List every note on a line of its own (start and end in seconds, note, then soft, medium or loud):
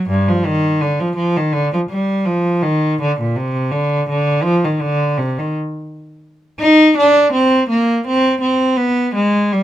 0.09 0.26 G2 medium
0.28 0.45 F3 medium
0.46 0.81 D#3 medium
0.81 0.99 D3 medium
1.00 1.15 F3 medium
1.16 1.34 F3 medium
1.37 1.54 D#3 medium
1.53 1.71 D3 medium
1.73 1.80 F3 medium
1.89 2.25 G3 medium
2.26 2.63 F3 medium
2.62 2.99 D#3 medium
3.01 3.19 D3 medium
3.20 3.37 A#2 medium
3.36 3.72 C3 medium
3.71 4.08 D3 medium
4.09 4.44 D3 medium
4.43 4.62 F3 medium
4.64 4.82 D#3 medium
4.81 5.17 D3 medium
5.18 5.35 C3 medium
5.38 5.54 D#3 medium
6.59 6.93 D#4 medium
6.97 7.32 D4 medium
7.32 7.68 C4 medium
7.69 8.04 A#3 medium
8.07 8.39 C4 medium
8.41 8.76 C4 medium
8.76 9.13 B3 medium
9.15 9.50 G#3 medium
9.52 9.63 G3 medium